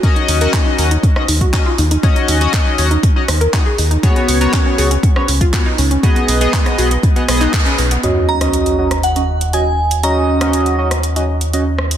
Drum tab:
HH |xxoxx-oxx-oxx-ox|xxoxx-oxx-oxx-ox|xxoxx-oxx-oxx-ox|xxoxxxoxxxoxxxox|
CP |----x-------x---|----x-------x---|----x-------x---|----x------xx---|
SD |---------r------|----------r-----|---------r------|-----r----r-----|
BD |o---o---o--oo---|o---o---o---o---|o---o---o--oo---|o---o---o---o---|

HH |x--xxx-xxx-xx--x|x--xxx-xxx-xx--x|
CP |----------------|----------------|
SD |---r---r--------|---r---r------r-|
BD |----------------|----------------|